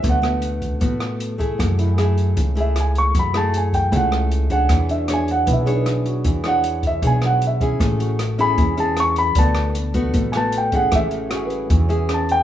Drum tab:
HH |xxxxxxxx|xxxxxxxx|xxxxxxxx|xxxxxxxx|
SD |-r---r--|r-r---r-|-r---r--|r-r---r-|
BD |o--oo--o|o---o---|o--oo--o|o---o---|

HH |xxxxxxxx|xxxxxxxx|xxxxxxxx|xxxxxxxx|
SD |-r---r--|r-r---r-|-r---r--|r-r---r-|
BD |o--oo--o|o---o---|o--oo--o|o---o---|